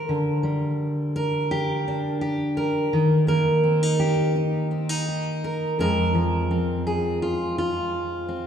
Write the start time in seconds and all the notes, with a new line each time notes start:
Already playing: G3 A#4
0.09 D3
0.43 G3
1.16 A#4
1.51 G4
1.88 D4
2.21 G4
2.57 A#4
2.93 D#3
3.27 A#3 A#4
3.64 C4
3.83 D#4
4.00 G4
4.36 D#4
4.71 C4
4.89 D#4
5.08 G4
5.44 A#4
5.79 F2 F3 G#3 C4 A#4
6.15 F3
6.51 C4
6.87 G#4
7.22 F4
7.58 F4
8.29 C4